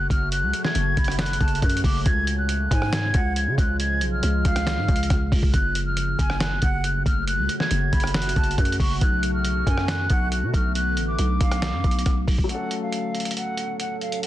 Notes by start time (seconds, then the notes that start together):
Already playing: C#3 F#3 A3 F#4
0.10 F#1 F6, kick, closed hi-hat
0.32 F#6, closed hi-hat
0.43 C#2
0.53 closed hi-hat
0.65 G#6, snare
0.75 F#1, closed hi-hat
0.97 F#1 B5, kick, closed hi-hat
1.04 cross-stick, closed hi-hat
1.12 closed hi-hat
1.19 F#6, finger snap, snare, closed hi-hat
1.26 closed hi-hat
1.33 closed hi-hat
1.41 F#1 A5, kick, closed hi-hat
1.48 closed hi-hat
1.55 closed hi-hat
1.62 F#2 F#6, kick, closed hi-hat
1.70 closed hi-hat
1.77 closed hi-hat
1.84 F#1 D6, kick, open hi-hat
2.06 C#2 F3 G#3 F4 G#6, kick, closed hi-hat
2.27 closed hi-hat
2.38 F#6
2.49 closed hi-hat
2.71 G#2 G#5, kick, closed hi-hat
2.82 cross-stick
2.93 G#6, finger snap, snare, closed hi-hat
3.14 C#2 F#5, kick, closed hi-hat
3.36 G#6, closed hi-hat
3.47 C#3
3.58 C#2 F#6, kick, closed hi-hat
3.80 G#6, closed hi-hat
4.01 B1, closed hi-hat
4.12 F6
4.23 C#2, closed hi-hat
4.45 C#2 F5, kick, closed hi-hat
4.56 cross-stick, closed hi-hat
4.67 finger snap, snare, closed hi-hat
4.78 G#2
4.88 C#2, kick, closed hi-hat
4.96 closed hi-hat
5.03 closed hi-hat
5.10 C#2, kick, cross-stick, closed hi-hat
5.32 C#2, kick, open hi-hat
5.43 kick
5.54 F#1 F#3 A3 F#4 F#6, kick, closed hi-hat
5.75 closed hi-hat
5.86 F6
5.97 closed hi-hat
6.19 F#1 G#5, kick, closed hi-hat
6.30 cross-stick
6.40 F#6, finger snap, snare, closed hi-hat
6.62 F#1 F#5, kick, closed hi-hat
6.84 F#6, closed hi-hat
7.06 F#1 F6, kick, closed hi-hat
7.27 F#6, closed hi-hat
7.38 C#2
7.49 closed hi-hat
7.60 G#6, snare
7.71 F#1, closed hi-hat
7.93 F#1 B5, kick, closed hi-hat
8.00 cross-stick, closed hi-hat
8.07 closed hi-hat
8.14 F#6, finger snap, snare, closed hi-hat
8.22 closed hi-hat
8.29 closed hi-hat
8.36 F#1 A5, kick, closed hi-hat
8.44 closed hi-hat
8.51 closed hi-hat
8.58 F#2 F#6, kick, closed hi-hat
8.65 closed hi-hat
8.72 closed hi-hat
8.80 F#1 C#6, kick, open hi-hat
9.01 B1 D3 B3 F#6, kick, closed hi-hat
9.23 closed hi-hat
9.34 F6
9.45 closed hi-hat
9.67 F#2 G#5, kick, closed hi-hat
9.78 cross-stick
9.88 F#6, finger snap, snare, closed hi-hat
10.10 B1 F#5, kick, closed hi-hat
10.32 F#6, closed hi-hat
10.43 B2
10.54 B1 F6, kick, closed hi-hat
10.75 F#6, closed hi-hat
10.97 A1, closed hi-hat
11.08 D6
11.19 B1, closed hi-hat
11.41 B1 F5, kick, closed hi-hat
11.51 cross-stick, closed hi-hat
11.62 finger snap, snare, closed hi-hat
11.73 F#2
11.84 B1, kick, closed hi-hat
11.91 closed hi-hat
11.99 closed hi-hat
12.06 B1, kick, cross-stick, closed hi-hat
12.28 B1, kick, open hi-hat
12.38 kick
12.44 F#3 A3
12.49 F#3 A3 C#4 A4 F#5, closed hi-hat
12.55 A4
12.71 closed hi-hat
12.82 F5
12.92 closed hi-hat
13.15 closed hi-hat
13.20 closed hi-hat
13.25 closed hi-hat
13.31 closed hi-hat
13.36 F#5, closed hi-hat
13.57 closed hi-hat
13.80 F#5, closed hi-hat
14.01 F5, closed hi-hat
14.12 closed hi-hat
14.23 F#5, closed hi-hat